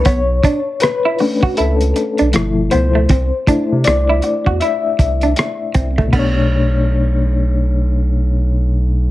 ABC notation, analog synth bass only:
X:1
M:4/4
L:1/16
Q:"Swing 16ths" 1/4=79
K:Clyd
V:1 name="Analog synth bass" clef=bass
B,,,2 z6 ^C,,2 z B,,, G,,,2 C,,2 | C,, z C, C, C,,2 z E,, z2 C,,2 z2 C,,2 | B,,,16 |]